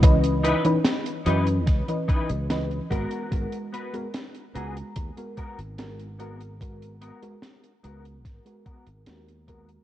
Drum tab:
HH |xxxxxxxxxxxxxxxx|xxxxxxxxxxxxxxxx|xxxxxxxxxxxxxxxx|
SD |----o---o---o---|----o-------o---|----o---o---o---|
BD |o-------o-o---o-|o-------o-o-----|o-------o-o---o-|